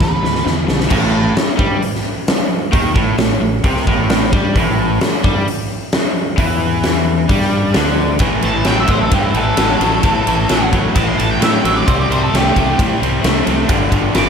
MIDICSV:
0, 0, Header, 1, 6, 480
1, 0, Start_track
1, 0, Tempo, 455927
1, 965, Time_signature, 4, 2, 24, 8
1, 15046, End_track
2, 0, Start_track
2, 0, Title_t, "Lead electric guitar"
2, 0, Program_c, 0, 29
2, 18, Note_on_c, 0, 71, 66
2, 459, Note_off_c, 0, 71, 0
2, 8896, Note_on_c, 0, 81, 80
2, 9123, Note_off_c, 0, 81, 0
2, 9127, Note_on_c, 0, 79, 77
2, 9242, Note_off_c, 0, 79, 0
2, 9265, Note_on_c, 0, 76, 82
2, 9371, Note_off_c, 0, 76, 0
2, 9378, Note_on_c, 0, 72, 78
2, 9477, Note_off_c, 0, 72, 0
2, 9481, Note_on_c, 0, 69, 82
2, 9596, Note_on_c, 0, 67, 81
2, 9599, Note_off_c, 0, 69, 0
2, 9717, Note_off_c, 0, 67, 0
2, 9725, Note_on_c, 0, 64, 87
2, 9835, Note_on_c, 0, 69, 80
2, 9842, Note_off_c, 0, 64, 0
2, 11241, Note_off_c, 0, 69, 0
2, 11536, Note_on_c, 0, 81, 97
2, 11650, Note_off_c, 0, 81, 0
2, 11650, Note_on_c, 0, 84, 93
2, 11766, Note_off_c, 0, 84, 0
2, 11772, Note_on_c, 0, 81, 86
2, 11906, Note_off_c, 0, 81, 0
2, 11906, Note_on_c, 0, 79, 76
2, 12030, Note_off_c, 0, 79, 0
2, 12030, Note_on_c, 0, 76, 88
2, 12136, Note_off_c, 0, 76, 0
2, 12140, Note_on_c, 0, 79, 84
2, 12261, Note_off_c, 0, 79, 0
2, 12261, Note_on_c, 0, 76, 82
2, 12372, Note_off_c, 0, 76, 0
2, 12382, Note_on_c, 0, 74, 88
2, 12499, Note_off_c, 0, 74, 0
2, 12499, Note_on_c, 0, 72, 106
2, 12611, Note_off_c, 0, 72, 0
2, 12630, Note_on_c, 0, 74, 84
2, 12737, Note_off_c, 0, 74, 0
2, 12745, Note_on_c, 0, 72, 91
2, 12854, Note_off_c, 0, 72, 0
2, 12870, Note_on_c, 0, 69, 94
2, 13009, Note_off_c, 0, 69, 0
2, 13009, Note_on_c, 0, 67, 91
2, 13223, Note_off_c, 0, 67, 0
2, 13235, Note_on_c, 0, 67, 99
2, 13456, Note_off_c, 0, 67, 0
2, 14917, Note_on_c, 0, 86, 117
2, 15046, Note_off_c, 0, 86, 0
2, 15046, End_track
3, 0, Start_track
3, 0, Title_t, "Overdriven electric guitar"
3, 0, Program_c, 1, 29
3, 0, Note_on_c, 1, 43, 70
3, 0, Note_on_c, 1, 52, 75
3, 209, Note_off_c, 1, 43, 0
3, 212, Note_off_c, 1, 52, 0
3, 232, Note_on_c, 1, 43, 66
3, 241, Note_on_c, 1, 52, 67
3, 455, Note_off_c, 1, 43, 0
3, 459, Note_off_c, 1, 52, 0
3, 471, Note_on_c, 1, 43, 69
3, 474, Note_on_c, 1, 50, 73
3, 693, Note_off_c, 1, 50, 0
3, 694, Note_off_c, 1, 43, 0
3, 706, Note_on_c, 1, 50, 75
3, 707, Note_on_c, 1, 43, 59
3, 931, Note_off_c, 1, 50, 0
3, 932, Note_off_c, 1, 43, 0
3, 941, Note_on_c, 1, 45, 94
3, 1419, Note_off_c, 1, 45, 0
3, 1657, Note_on_c, 1, 55, 81
3, 1903, Note_off_c, 1, 55, 0
3, 2864, Note_on_c, 1, 51, 91
3, 3098, Note_off_c, 1, 51, 0
3, 3102, Note_on_c, 1, 45, 86
3, 3339, Note_off_c, 1, 45, 0
3, 3351, Note_on_c, 1, 45, 76
3, 3548, Note_off_c, 1, 45, 0
3, 3591, Note_on_c, 1, 45, 59
3, 3788, Note_off_c, 1, 45, 0
3, 3836, Note_on_c, 1, 48, 99
3, 4071, Note_off_c, 1, 48, 0
3, 4077, Note_on_c, 1, 45, 102
3, 4547, Note_on_c, 1, 55, 96
3, 4551, Note_off_c, 1, 45, 0
3, 4786, Note_off_c, 1, 55, 0
3, 4799, Note_on_c, 1, 45, 93
3, 5272, Note_off_c, 1, 45, 0
3, 5526, Note_on_c, 1, 55, 100
3, 5755, Note_off_c, 1, 55, 0
3, 6708, Note_on_c, 1, 52, 91
3, 7667, Note_off_c, 1, 52, 0
3, 7676, Note_on_c, 1, 55, 91
3, 8145, Note_on_c, 1, 50, 99
3, 8152, Note_off_c, 1, 55, 0
3, 8627, Note_off_c, 1, 50, 0
3, 8634, Note_on_c, 1, 45, 70
3, 8635, Note_on_c, 1, 52, 85
3, 8854, Note_off_c, 1, 45, 0
3, 8855, Note_off_c, 1, 52, 0
3, 8876, Note_on_c, 1, 45, 66
3, 8882, Note_on_c, 1, 52, 80
3, 9096, Note_off_c, 1, 45, 0
3, 9099, Note_off_c, 1, 52, 0
3, 9112, Note_on_c, 1, 45, 85
3, 9124, Note_on_c, 1, 54, 102
3, 9334, Note_off_c, 1, 45, 0
3, 9340, Note_off_c, 1, 54, 0
3, 9351, Note_on_c, 1, 45, 60
3, 9360, Note_on_c, 1, 54, 76
3, 9570, Note_off_c, 1, 45, 0
3, 9578, Note_off_c, 1, 54, 0
3, 9583, Note_on_c, 1, 45, 80
3, 9587, Note_on_c, 1, 52, 75
3, 9810, Note_off_c, 1, 45, 0
3, 9812, Note_off_c, 1, 52, 0
3, 9823, Note_on_c, 1, 45, 80
3, 9828, Note_on_c, 1, 52, 72
3, 10050, Note_off_c, 1, 45, 0
3, 10053, Note_off_c, 1, 52, 0
3, 10072, Note_on_c, 1, 45, 82
3, 10080, Note_on_c, 1, 54, 84
3, 10290, Note_off_c, 1, 45, 0
3, 10296, Note_off_c, 1, 54, 0
3, 10303, Note_on_c, 1, 45, 73
3, 10308, Note_on_c, 1, 54, 83
3, 10531, Note_off_c, 1, 45, 0
3, 10534, Note_off_c, 1, 54, 0
3, 10552, Note_on_c, 1, 45, 67
3, 10562, Note_on_c, 1, 52, 83
3, 10776, Note_off_c, 1, 45, 0
3, 10781, Note_off_c, 1, 52, 0
3, 10798, Note_on_c, 1, 45, 65
3, 10806, Note_on_c, 1, 52, 74
3, 11019, Note_off_c, 1, 45, 0
3, 11023, Note_off_c, 1, 52, 0
3, 11041, Note_on_c, 1, 45, 74
3, 11041, Note_on_c, 1, 54, 96
3, 11256, Note_off_c, 1, 45, 0
3, 11261, Note_off_c, 1, 54, 0
3, 11269, Note_on_c, 1, 45, 67
3, 11273, Note_on_c, 1, 54, 70
3, 11495, Note_off_c, 1, 45, 0
3, 11497, Note_off_c, 1, 54, 0
3, 11522, Note_on_c, 1, 45, 79
3, 11522, Note_on_c, 1, 52, 89
3, 11742, Note_off_c, 1, 45, 0
3, 11742, Note_off_c, 1, 52, 0
3, 11756, Note_on_c, 1, 45, 82
3, 11764, Note_on_c, 1, 52, 77
3, 11979, Note_off_c, 1, 45, 0
3, 11983, Note_off_c, 1, 52, 0
3, 12001, Note_on_c, 1, 45, 82
3, 12008, Note_on_c, 1, 54, 97
3, 12222, Note_off_c, 1, 45, 0
3, 12225, Note_off_c, 1, 54, 0
3, 12253, Note_on_c, 1, 45, 65
3, 12256, Note_on_c, 1, 54, 71
3, 12467, Note_off_c, 1, 45, 0
3, 12469, Note_off_c, 1, 54, 0
3, 12487, Note_on_c, 1, 48, 64
3, 12493, Note_on_c, 1, 55, 82
3, 12705, Note_off_c, 1, 48, 0
3, 12707, Note_off_c, 1, 55, 0
3, 12736, Note_on_c, 1, 48, 73
3, 12736, Note_on_c, 1, 55, 82
3, 12949, Note_off_c, 1, 48, 0
3, 12949, Note_off_c, 1, 55, 0
3, 12967, Note_on_c, 1, 57, 97
3, 12969, Note_on_c, 1, 48, 88
3, 13184, Note_off_c, 1, 57, 0
3, 13185, Note_off_c, 1, 48, 0
3, 13207, Note_on_c, 1, 48, 71
3, 13213, Note_on_c, 1, 57, 72
3, 13424, Note_off_c, 1, 48, 0
3, 13428, Note_off_c, 1, 57, 0
3, 13452, Note_on_c, 1, 48, 83
3, 13459, Note_on_c, 1, 55, 82
3, 13667, Note_off_c, 1, 48, 0
3, 13671, Note_off_c, 1, 55, 0
3, 13682, Note_on_c, 1, 48, 76
3, 13690, Note_on_c, 1, 55, 80
3, 13902, Note_off_c, 1, 48, 0
3, 13905, Note_off_c, 1, 55, 0
3, 13915, Note_on_c, 1, 48, 82
3, 13921, Note_on_c, 1, 57, 91
3, 14138, Note_off_c, 1, 48, 0
3, 14141, Note_off_c, 1, 57, 0
3, 14149, Note_on_c, 1, 48, 66
3, 14154, Note_on_c, 1, 57, 71
3, 14375, Note_off_c, 1, 48, 0
3, 14377, Note_off_c, 1, 57, 0
3, 14396, Note_on_c, 1, 43, 73
3, 14402, Note_on_c, 1, 50, 84
3, 14618, Note_off_c, 1, 43, 0
3, 14621, Note_off_c, 1, 50, 0
3, 14637, Note_on_c, 1, 43, 61
3, 14644, Note_on_c, 1, 50, 90
3, 14858, Note_off_c, 1, 43, 0
3, 14862, Note_off_c, 1, 50, 0
3, 14880, Note_on_c, 1, 43, 86
3, 14885, Note_on_c, 1, 52, 95
3, 15046, Note_off_c, 1, 43, 0
3, 15046, Note_off_c, 1, 52, 0
3, 15046, End_track
4, 0, Start_track
4, 0, Title_t, "Fingered electric bass"
4, 0, Program_c, 2, 33
4, 4, Note_on_c, 2, 38, 76
4, 228, Note_off_c, 2, 38, 0
4, 243, Note_on_c, 2, 38, 70
4, 467, Note_off_c, 2, 38, 0
4, 485, Note_on_c, 2, 40, 85
4, 708, Note_off_c, 2, 40, 0
4, 720, Note_on_c, 2, 35, 69
4, 945, Note_off_c, 2, 35, 0
4, 964, Note_on_c, 2, 33, 107
4, 1410, Note_off_c, 2, 33, 0
4, 1670, Note_on_c, 2, 43, 88
4, 1899, Note_off_c, 2, 43, 0
4, 2880, Note_on_c, 2, 39, 105
4, 3104, Note_off_c, 2, 39, 0
4, 3112, Note_on_c, 2, 33, 100
4, 3339, Note_off_c, 2, 33, 0
4, 3350, Note_on_c, 2, 33, 73
4, 3578, Note_off_c, 2, 33, 0
4, 3599, Note_on_c, 2, 33, 64
4, 3823, Note_off_c, 2, 33, 0
4, 3832, Note_on_c, 2, 36, 89
4, 4059, Note_off_c, 2, 36, 0
4, 4072, Note_on_c, 2, 33, 94
4, 4522, Note_off_c, 2, 33, 0
4, 4563, Note_on_c, 2, 43, 92
4, 4784, Note_off_c, 2, 43, 0
4, 4797, Note_on_c, 2, 33, 106
4, 5244, Note_off_c, 2, 33, 0
4, 5519, Note_on_c, 2, 43, 86
4, 5742, Note_off_c, 2, 43, 0
4, 6715, Note_on_c, 2, 40, 114
4, 7636, Note_off_c, 2, 40, 0
4, 7676, Note_on_c, 2, 43, 97
4, 8125, Note_off_c, 2, 43, 0
4, 8170, Note_on_c, 2, 38, 99
4, 8613, Note_off_c, 2, 38, 0
4, 8633, Note_on_c, 2, 33, 90
4, 8826, Note_off_c, 2, 33, 0
4, 8882, Note_on_c, 2, 33, 89
4, 9072, Note_off_c, 2, 33, 0
4, 9116, Note_on_c, 2, 33, 81
4, 9308, Note_off_c, 2, 33, 0
4, 9359, Note_on_c, 2, 33, 79
4, 9550, Note_off_c, 2, 33, 0
4, 9599, Note_on_c, 2, 43, 87
4, 9791, Note_off_c, 2, 43, 0
4, 9834, Note_on_c, 2, 33, 89
4, 10028, Note_off_c, 2, 33, 0
4, 10082, Note_on_c, 2, 33, 88
4, 10273, Note_off_c, 2, 33, 0
4, 10324, Note_on_c, 2, 33, 83
4, 10515, Note_off_c, 2, 33, 0
4, 10565, Note_on_c, 2, 33, 91
4, 10755, Note_off_c, 2, 33, 0
4, 10814, Note_on_c, 2, 33, 93
4, 11000, Note_off_c, 2, 33, 0
4, 11053, Note_on_c, 2, 33, 82
4, 11430, Note_off_c, 2, 33, 0
4, 11538, Note_on_c, 2, 33, 87
4, 11723, Note_off_c, 2, 33, 0
4, 11788, Note_on_c, 2, 33, 88
4, 11970, Note_off_c, 2, 33, 0
4, 12014, Note_on_c, 2, 45, 87
4, 12201, Note_off_c, 2, 45, 0
4, 12257, Note_on_c, 2, 33, 89
4, 12443, Note_off_c, 2, 33, 0
4, 12506, Note_on_c, 2, 36, 106
4, 12689, Note_off_c, 2, 36, 0
4, 12740, Note_on_c, 2, 36, 86
4, 12925, Note_off_c, 2, 36, 0
4, 12986, Note_on_c, 2, 36, 89
4, 13169, Note_off_c, 2, 36, 0
4, 13224, Note_on_c, 2, 36, 81
4, 13407, Note_off_c, 2, 36, 0
4, 13467, Note_on_c, 2, 45, 100
4, 13649, Note_off_c, 2, 45, 0
4, 13705, Note_on_c, 2, 36, 90
4, 13888, Note_off_c, 2, 36, 0
4, 13939, Note_on_c, 2, 36, 93
4, 14124, Note_off_c, 2, 36, 0
4, 14181, Note_on_c, 2, 36, 85
4, 14365, Note_off_c, 2, 36, 0
4, 14418, Note_on_c, 2, 31, 92
4, 14603, Note_off_c, 2, 31, 0
4, 14653, Note_on_c, 2, 31, 95
4, 14840, Note_off_c, 2, 31, 0
4, 14892, Note_on_c, 2, 31, 81
4, 15046, Note_off_c, 2, 31, 0
4, 15046, End_track
5, 0, Start_track
5, 0, Title_t, "Muted overdriven electric guitar strokes"
5, 1432, Note_on_c, 9, 29, 63
5, 1537, Note_off_c, 9, 29, 0
5, 5289, Note_on_c, 9, 29, 63
5, 5394, Note_off_c, 9, 29, 0
5, 15046, End_track
6, 0, Start_track
6, 0, Title_t, "Drums"
6, 5, Note_on_c, 9, 36, 96
6, 14, Note_on_c, 9, 38, 55
6, 110, Note_off_c, 9, 36, 0
6, 119, Note_off_c, 9, 38, 0
6, 257, Note_on_c, 9, 38, 55
6, 362, Note_off_c, 9, 38, 0
6, 371, Note_on_c, 9, 38, 48
6, 476, Note_off_c, 9, 38, 0
6, 490, Note_on_c, 9, 38, 66
6, 595, Note_off_c, 9, 38, 0
6, 721, Note_on_c, 9, 38, 77
6, 826, Note_off_c, 9, 38, 0
6, 842, Note_on_c, 9, 38, 64
6, 947, Note_off_c, 9, 38, 0
6, 950, Note_on_c, 9, 49, 108
6, 958, Note_on_c, 9, 36, 112
6, 1055, Note_off_c, 9, 49, 0
6, 1063, Note_off_c, 9, 36, 0
6, 1434, Note_on_c, 9, 46, 43
6, 1442, Note_on_c, 9, 38, 100
6, 1540, Note_off_c, 9, 46, 0
6, 1547, Note_off_c, 9, 38, 0
6, 1674, Note_on_c, 9, 36, 110
6, 1779, Note_off_c, 9, 36, 0
6, 1918, Note_on_c, 9, 46, 60
6, 2024, Note_off_c, 9, 46, 0
6, 2052, Note_on_c, 9, 38, 31
6, 2158, Note_off_c, 9, 38, 0
6, 2395, Note_on_c, 9, 46, 56
6, 2402, Note_on_c, 9, 38, 117
6, 2500, Note_off_c, 9, 46, 0
6, 2507, Note_off_c, 9, 38, 0
6, 2876, Note_on_c, 9, 36, 114
6, 2883, Note_on_c, 9, 46, 59
6, 2981, Note_off_c, 9, 36, 0
6, 2988, Note_off_c, 9, 46, 0
6, 3113, Note_on_c, 9, 36, 103
6, 3219, Note_off_c, 9, 36, 0
6, 3347, Note_on_c, 9, 46, 46
6, 3355, Note_on_c, 9, 38, 94
6, 3452, Note_off_c, 9, 46, 0
6, 3460, Note_off_c, 9, 38, 0
6, 3827, Note_on_c, 9, 46, 52
6, 3834, Note_on_c, 9, 36, 102
6, 3932, Note_off_c, 9, 46, 0
6, 3939, Note_off_c, 9, 36, 0
6, 3956, Note_on_c, 9, 38, 30
6, 4061, Note_off_c, 9, 38, 0
6, 4076, Note_on_c, 9, 36, 95
6, 4182, Note_off_c, 9, 36, 0
6, 4310, Note_on_c, 9, 46, 61
6, 4318, Note_on_c, 9, 38, 104
6, 4416, Note_off_c, 9, 46, 0
6, 4423, Note_off_c, 9, 38, 0
6, 4557, Note_on_c, 9, 36, 115
6, 4662, Note_off_c, 9, 36, 0
6, 4797, Note_on_c, 9, 36, 98
6, 4800, Note_on_c, 9, 46, 54
6, 4902, Note_off_c, 9, 36, 0
6, 4905, Note_off_c, 9, 46, 0
6, 5272, Note_on_c, 9, 46, 47
6, 5279, Note_on_c, 9, 38, 98
6, 5377, Note_off_c, 9, 46, 0
6, 5384, Note_off_c, 9, 38, 0
6, 5519, Note_on_c, 9, 36, 86
6, 5625, Note_off_c, 9, 36, 0
6, 5763, Note_on_c, 9, 46, 58
6, 5868, Note_off_c, 9, 46, 0
6, 6235, Note_on_c, 9, 46, 55
6, 6242, Note_on_c, 9, 38, 103
6, 6340, Note_off_c, 9, 46, 0
6, 6347, Note_off_c, 9, 38, 0
6, 6717, Note_on_c, 9, 36, 90
6, 6720, Note_on_c, 9, 46, 60
6, 6822, Note_off_c, 9, 36, 0
6, 6826, Note_off_c, 9, 46, 0
6, 7192, Note_on_c, 9, 46, 47
6, 7199, Note_on_c, 9, 38, 83
6, 7297, Note_off_c, 9, 46, 0
6, 7304, Note_off_c, 9, 38, 0
6, 7679, Note_on_c, 9, 36, 110
6, 7679, Note_on_c, 9, 46, 57
6, 7784, Note_off_c, 9, 36, 0
6, 7785, Note_off_c, 9, 46, 0
6, 7804, Note_on_c, 9, 38, 31
6, 7909, Note_off_c, 9, 38, 0
6, 8146, Note_on_c, 9, 46, 56
6, 8154, Note_on_c, 9, 38, 108
6, 8252, Note_off_c, 9, 46, 0
6, 8259, Note_off_c, 9, 38, 0
6, 8620, Note_on_c, 9, 51, 79
6, 8633, Note_on_c, 9, 36, 101
6, 8726, Note_off_c, 9, 51, 0
6, 8739, Note_off_c, 9, 36, 0
6, 8868, Note_on_c, 9, 51, 65
6, 8974, Note_off_c, 9, 51, 0
6, 9101, Note_on_c, 9, 51, 62
6, 9108, Note_on_c, 9, 38, 78
6, 9206, Note_off_c, 9, 51, 0
6, 9214, Note_off_c, 9, 38, 0
6, 9343, Note_on_c, 9, 51, 65
6, 9355, Note_on_c, 9, 36, 87
6, 9448, Note_off_c, 9, 51, 0
6, 9460, Note_off_c, 9, 36, 0
6, 9594, Note_on_c, 9, 51, 82
6, 9599, Note_on_c, 9, 36, 114
6, 9700, Note_off_c, 9, 51, 0
6, 9705, Note_off_c, 9, 36, 0
6, 9837, Note_on_c, 9, 51, 59
6, 9942, Note_off_c, 9, 51, 0
6, 10074, Note_on_c, 9, 51, 101
6, 10082, Note_on_c, 9, 38, 110
6, 10179, Note_off_c, 9, 51, 0
6, 10187, Note_off_c, 9, 38, 0
6, 10326, Note_on_c, 9, 51, 72
6, 10431, Note_off_c, 9, 51, 0
6, 10559, Note_on_c, 9, 51, 83
6, 10566, Note_on_c, 9, 36, 101
6, 10664, Note_off_c, 9, 51, 0
6, 10672, Note_off_c, 9, 36, 0
6, 10810, Note_on_c, 9, 51, 78
6, 10916, Note_off_c, 9, 51, 0
6, 11045, Note_on_c, 9, 51, 77
6, 11053, Note_on_c, 9, 38, 77
6, 11151, Note_off_c, 9, 51, 0
6, 11158, Note_off_c, 9, 38, 0
6, 11293, Note_on_c, 9, 51, 61
6, 11294, Note_on_c, 9, 36, 79
6, 11398, Note_off_c, 9, 51, 0
6, 11400, Note_off_c, 9, 36, 0
6, 11532, Note_on_c, 9, 51, 94
6, 11537, Note_on_c, 9, 36, 105
6, 11638, Note_off_c, 9, 51, 0
6, 11642, Note_off_c, 9, 36, 0
6, 11785, Note_on_c, 9, 51, 69
6, 11891, Note_off_c, 9, 51, 0
6, 12021, Note_on_c, 9, 51, 99
6, 12028, Note_on_c, 9, 38, 98
6, 12126, Note_off_c, 9, 51, 0
6, 12134, Note_off_c, 9, 38, 0
6, 12266, Note_on_c, 9, 51, 70
6, 12372, Note_off_c, 9, 51, 0
6, 12505, Note_on_c, 9, 36, 116
6, 12507, Note_on_c, 9, 51, 85
6, 12610, Note_off_c, 9, 36, 0
6, 12612, Note_off_c, 9, 51, 0
6, 12757, Note_on_c, 9, 51, 62
6, 12862, Note_off_c, 9, 51, 0
6, 12997, Note_on_c, 9, 51, 72
6, 13005, Note_on_c, 9, 38, 89
6, 13103, Note_off_c, 9, 51, 0
6, 13110, Note_off_c, 9, 38, 0
6, 13226, Note_on_c, 9, 36, 76
6, 13226, Note_on_c, 9, 51, 67
6, 13331, Note_off_c, 9, 36, 0
6, 13331, Note_off_c, 9, 51, 0
6, 13467, Note_on_c, 9, 36, 109
6, 13471, Note_on_c, 9, 51, 84
6, 13572, Note_off_c, 9, 36, 0
6, 13576, Note_off_c, 9, 51, 0
6, 13718, Note_on_c, 9, 51, 64
6, 13823, Note_off_c, 9, 51, 0
6, 13940, Note_on_c, 9, 51, 89
6, 13948, Note_on_c, 9, 38, 105
6, 14046, Note_off_c, 9, 51, 0
6, 14053, Note_off_c, 9, 38, 0
6, 14178, Note_on_c, 9, 51, 76
6, 14284, Note_off_c, 9, 51, 0
6, 14410, Note_on_c, 9, 51, 92
6, 14416, Note_on_c, 9, 36, 113
6, 14515, Note_off_c, 9, 51, 0
6, 14521, Note_off_c, 9, 36, 0
6, 14655, Note_on_c, 9, 36, 88
6, 14656, Note_on_c, 9, 51, 74
6, 14760, Note_off_c, 9, 36, 0
6, 14761, Note_off_c, 9, 51, 0
6, 14892, Note_on_c, 9, 51, 80
6, 14900, Note_on_c, 9, 38, 84
6, 14998, Note_off_c, 9, 51, 0
6, 15005, Note_off_c, 9, 38, 0
6, 15046, End_track
0, 0, End_of_file